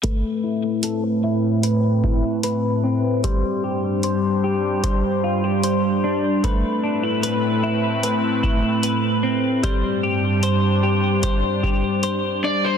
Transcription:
<<
  \new Staff \with { instrumentName = "Electric slide guitar" } { \time 4/4 \key a \minor \tempo 4 = 75 r1 | r1 | r1 | r2. r8 d''16 c''16 | }
  \new Staff \with { instrumentName = "Clean electric guitar" } { \time 4/4 \key a \minor <a b'>8 e'8 a'16 b'16 e'8 b'8 e'8 b'8 c'8 | <g c''>8 g'8 c''8 g'8 c''8 f'16 g'16 c''8 d'8 | <a b'>8 d'16 e'16 b'8 e'8 b'8 e'8 b'8 c'8 | <g c''>8 g'8 c''8 g'8 c''8 g'8 c''8 d'8 | }
  \new Staff \with { instrumentName = "Analog synth pad" } { \time 4/4 \key a \minor <a, a c' b'>1 | <g, g d' c''>1 | <a, a c' b'>1 | <g, g d' c''>1 | }
  \new DrumStaff \with { instrumentName = "Drums" } \drummode { \time 4/4 <hh bd>4 hh4 hh8 bd8 hh4 | <hh bd>4 hh4 <hh bd>4 hh4 | <hh bd>4 hh4 hh8 bd8 hh4 | <hh bd>4 hh4 <hh bd>8 bd8 hh4 | }
>>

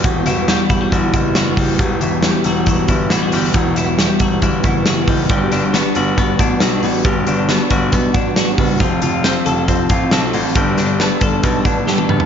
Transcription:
<<
  \new Staff \with { instrumentName = "Clean electric guitar" } { \time 4/4 \key g \major \tempo 4 = 137 <e, e g e' fis'>8 e'8 g8 e'16 fis'16 e8 e'8 fis'8 g8 | e,8 e'8 g8 fis'8 e8 e'8 e'16 fis'16 g8 | e,8 e'8 g8 fis'8 e8 e'8 fis'8 g8 | g8 d'8 b8 fis'8 b8 d'8 fis'8 b8 |
g8 d'8 b8 fis'8 b8 d'8 fis'8 b8 | f8 f'8 c'8 a'8 c'8 f'8 a'8 c'8 | g8 d'8 b8 a'8 b8 d'8 g'16 a'16 b8 | }
  \new Staff \with { instrumentName = "Clean electric guitar" } { \time 4/4 \key g \major <e, b, e g b fis'>8 <e g b fis'>8 <e, b, e g b fis'>8 <e g b fis'>8 <e g b fis'>8 <e g b fis'>8 <e, b, e g b fis'>4 | <e, b, e g b fis'>8 <e g b fis'>8 <e, b, e g b fis'>8 <e g b fis'>8 <e g b fis'>8 <e g b fis'>8 <e, b, e g b fis'>4 | <e, b, e g b fis'>8 <e g b fis'>8 <e, b, e g b fis'>8 <e g b fis'>8 <e g b fis'>8 <e g b fis'>8 <e, b, e g b fis'>4 | <g b d' fis'>8 <b d' fis'>8 <g b d' fis'>8 <b d' fis'>8 <g b d' fis'>8 <b d' fis'>8 <g b d' fis'>4 |
<g b d' fis'>8 <b d' fis'>8 <g b d' fis'>8 <b d' fis'>8 <g b d' fis'>8 <b d' fis'>8 <g b d' fis'>4 | <f c' f' a'>8 <c' f' a'>8 <f c' f' a'>8 <c' f' a'>8 <f c' f' a'>8 <c' f' a'>8 <f c' f' a'>4 | <g b d' a'>8 <b d' a'>8 <g b d' a'>8 <b d' a'>8 <g b d' a'>8 <b d' a'>8 <g b d' a'>4 | }
  \new Staff \with { instrumentName = "Grand piano" } { \clef bass \time 4/4 \key g \major e,,8 e,,8. r16 e,,8 g,,8 fis,,4 fis,,8 | e,,8 e,,8. r16 e,,4 g,,8 a,,8 g,,8 | e,,8 e,,8. r16 e,,8 g,,8 fis,,4 fis,,8 | g,,8 g,,8. r16 g,,4 a,,8 b,,8 a,,8 |
g,,8 g,,8. r16 g,,8 b,,8 a,,4 fis,,8 | f,,8 f,,8. r16 f,,4 a,,8 b,,8 a,,8 | g,,8 g,,8. r16 g,,8 b,,8 a,,4 fis,,8 | }
  \new DrumStaff \with { instrumentName = "Drums" } \drummode { \time 4/4 <hh bd>8 <hh sn>8 <hh sn>8 <hh bd>8 <hh bd>8 <hh bd>8 <hh sn>8 <hho bd>8 | <hh bd>8 hh8 <hh sn>8 hh8 <hh bd>8 <hh bd>8 <hh sn>8 hho8 | <hh bd>8 <hh sn>8 <hh sn>8 <hh bd>8 <hh bd>8 <hh bd>8 <hh sn>8 <hho bd>8 | <hh bd>8 <hh sn>8 <hh sn>8 hh8 <hh bd>8 <hh bd>8 <hh sn>8 hho8 |
<hh bd>8 hh8 <hh sn>8 <hh bd>8 <hh bd>8 <hh bd>8 <hh sn>8 <hho bd>8 | <hh bd>8 hh8 <hh sn>8 hh8 <hh bd>8 <hh bd>8 <hh sn>8 hho8 | <hh bd>8 <hh sn>8 <hh sn>8 <hh bd>8 <hh bd>8 <hh bd>8 sn16 tommh16 toml16 tomfh16 | }
>>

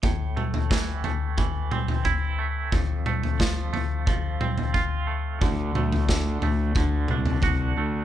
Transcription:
<<
  \new Staff \with { instrumentName = "Clean electric guitar" } { \time 4/4 \key a \minor \tempo 4 = 89 a,8 a8 e8 a8 e8 c'8 e'8 a8 | f,8 a8 f8 a8 f8 c'8 f'8 a8 | d8 a8 d8 a8 d8 d'8 fis'8 a8 | }
  \new Staff \with { instrumentName = "Fingered electric bass" } { \clef bass \time 4/4 \key a \minor r1 | r1 | d,8 d,8 d,8 d,8 d,8 c,8 c,8 d,8 | }
  \new DrumStaff \with { instrumentName = "Drums" } \drummode { \time 4/4 <bd tomfh>8 toml16 tomfh16 <bd sn>8 tomfh8 <bd tomfh>8 toml16 tomfh16 <bd tomfh>4 | <bd tomfh>8 toml16 tomfh16 <bd sn>8 tomfh8 <bd tomfh>8 toml16 tomfh16 <bd tomfh>4 | <bd tomfh>8 toml16 tomfh16 <bd sn>8 tomfh8 <bd tomfh>8 toml16 tomfh16 <bd tomfh>4 | }
>>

